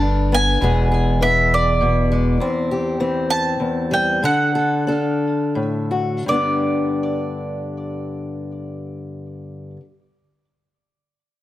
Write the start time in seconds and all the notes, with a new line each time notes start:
Already playing: G1 D3 D4 A5
0.01 G2
0.32 B3 G#5
0.61 E1 E2 E3 G#3 B3 G#4
0.92 G#4
1.21 E3 B3 E5
1.54 D5
1.81 B2
2.12 G#3
2.40 E2 C4
2.71 G4
3.00 E3 C4
3.30 A5
3.60 E2
3.91 G3 G5
4.23 D3 A4 F#5
4.55 A4
4.87 D4 A4
5.55 A2
5.91 F#4
6.26 G2 D3 B3 D5
6.32 D4 G4